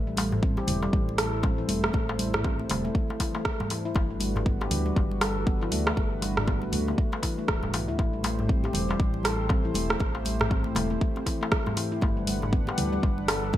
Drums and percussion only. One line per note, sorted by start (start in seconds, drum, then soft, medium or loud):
0.17 open hi-hat medium
0.17 high conga medium
0.17 darbuka tek medium
0.32 muted conga soft
0.32 darbuka dum medium
0.43 kick loud
0.43 high conga medium
0.57 muted conga medium
0.57 darbuka tek medium
0.67 open hi-hat medium
0.67 high conga loud
0.67 low conga medium
0.83 muted conga soft
0.83 darbuka tek medium
0.93 kick loud
1.09 muted conga soft
1.18 cross-stick medium
1.18 open hi-hat medium
1.18 high conga medium
1.18 darbuka tek medium
1.43 kick loud
1.43 muted conga soft
1.43 darbuka tek medium
1.43 high conga medium
1.69 open hi-hat medium
1.69 muted conga medium
1.69 high conga medium
1.84 cross-stick medium
1.84 darbuka tek medium
1.94 kick loud
1.94 muted conga soft
2.09 darbuka tek medium
2.19 open hi-hat medium
2.19 high conga medium
2.34 cross-stick medium
2.34 muted conga soft
2.34 darbuka dum medium
2.44 kick loud
2.44 high conga medium
2.44 darbuka tek medium
2.60 muted conga soft
2.69 open hi-hat medium
2.69 high conga medium
2.69 darbuka tek medium
2.69 low conga medium
2.85 muted conga soft
2.95 kick loud
3.10 muted conga soft
3.10 darbuka tek medium
3.20 kick medium
3.20 open hi-hat medium
3.20 darbuka ka loud
3.35 darbuka tek medium
3.45 kick loud
3.45 cross-stick medium
3.45 muted conga soft
3.60 darbuka ka medium
3.60 high conga loud
3.60 darbuka dum medium
3.70 open hi-hat medium
3.70 muted conga medium
3.70 darbuka tek medium
3.95 kick loud
3.95 muted conga soft
3.95 darbuka tek loud
4.20 open hi-hat medium
4.20 high conga medium
4.36 muted conga soft
4.36 darbuka tek medium
4.36 darbuka dum medium
4.46 kick loud
4.46 high conga medium
4.61 muted conga soft
4.61 darbuka tek medium
4.71 open hi-hat medium
4.71 high conga loud
4.71 low conga medium
4.86 muted conga soft
4.96 kick loud
4.96 darbuka tek medium
5.11 muted conga soft
5.21 cross-stick medium
5.21 open hi-hat medium
5.21 high conga medium
5.21 darbuka tek loud
5.47 kick loud
5.47 muted conga soft
5.47 high conga medium
5.62 darbuka tek medium
5.71 open hi-hat medium
5.71 muted conga soft
5.71 high conga medium
5.87 cross-stick medium
5.87 darbuka tek medium
5.97 kick loud
5.97 muted conga soft
6.22 open hi-hat medium
6.22 darbuka tek medium
6.22 high conga medium
6.37 cross-stick medium
6.37 muted conga soft
6.37 darbuka dum medium
6.47 kick loud
6.47 high conga medium
6.47 darbuka tek medium
6.62 muted conga soft
6.72 open hi-hat medium
6.72 high conga medium
6.72 low conga medium
6.88 muted conga soft
6.88 darbuka tek medium
6.98 kick loud
7.12 muted conga soft
7.12 darbuka tek medium
7.23 kick medium
7.23 open hi-hat medium
7.23 darbuka ka medium
7.48 kick loud
7.48 cross-stick medium
7.48 muted conga soft
7.48 darbuka tek medium
7.63 darbuka ka medium
7.63 high conga loud
7.63 darbuka dum medium
7.73 open hi-hat medium
7.73 muted conga soft
7.73 darbuka tek medium
7.99 kick loud
7.99 muted conga soft
7.99 darbuka tek medium
8.24 open hi-hat medium
8.24 high conga medium
8.24 darbuka tek medium
8.39 muted conga soft
8.39 darbuka dum medium
8.49 kick loud
8.49 high conga medium
8.64 muted conga soft
8.64 darbuka tek medium
8.73 open hi-hat medium
8.73 high conga loud
8.73 low conga medium
8.88 muted conga soft
8.88 darbuka tek medium
9.00 kick loud
9.14 muted conga medium
9.23 cross-stick medium
9.23 open hi-hat medium
9.23 high conga medium
9.23 darbuka tek medium
9.49 kick loud
9.49 muted conga soft
9.49 darbuka tek medium
9.49 high conga medium
9.74 open hi-hat medium
9.74 muted conga medium
9.74 high conga loud
9.90 cross-stick medium
9.90 darbuka tek medium
10.00 kick loud
10.00 muted conga medium
10.15 darbuka tek medium
10.25 open hi-hat medium
10.25 high conga medium
10.40 cross-stick medium
10.40 muted conga soft
10.40 darbuka dum medium
10.51 kick loud
10.51 darbuka tek medium
10.51 high conga medium
10.64 muted conga soft
10.75 open hi-hat medium
10.75 high conga loud
10.75 darbuka tek medium
10.75 low conga medium
10.90 muted conga soft
11.01 kick loud
11.16 muted conga soft
11.16 darbuka tek medium
11.26 kick medium
11.26 open hi-hat medium
11.26 darbuka ka medium
11.43 darbuka tek medium
11.52 kick loud
11.52 cross-stick medium
11.52 muted conga soft
11.66 darbuka ka medium
11.66 high conga loud
11.66 darbuka dum medium
11.77 open hi-hat medium
11.77 muted conga soft
11.77 darbuka tek medium
12.01 kick loud
12.01 muted conga medium
12.01 darbuka tek medium
12.27 open hi-hat medium
12.27 high conga medium
12.42 muted conga soft
12.42 darbuka tek medium
12.42 darbuka dum medium
12.53 kick loud
12.53 high conga medium
12.67 muted conga medium
12.67 darbuka tek medium
12.78 open hi-hat medium
12.78 high conga medium
12.78 low conga medium
12.93 muted conga soft
13.03 kick loud
13.03 darbuka tek medium
13.18 muted conga soft
13.28 cross-stick medium
13.28 open hi-hat medium
13.28 high conga medium
13.28 darbuka tek medium
13.53 kick loud
13.53 muted conga soft
13.53 high conga medium